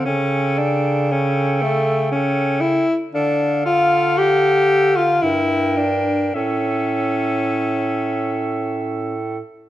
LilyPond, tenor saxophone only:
\new Staff \with { instrumentName = "Tenor saxophone" } { \time 3/4 \key a \phrygian \tempo 4 = 56 cis'8 d'8 cis'8 a8 cis'8 e'16 r16 | d'8 f'8 g'8. f'16 e'8 d'8 | cis'2~ cis'8 r8 | }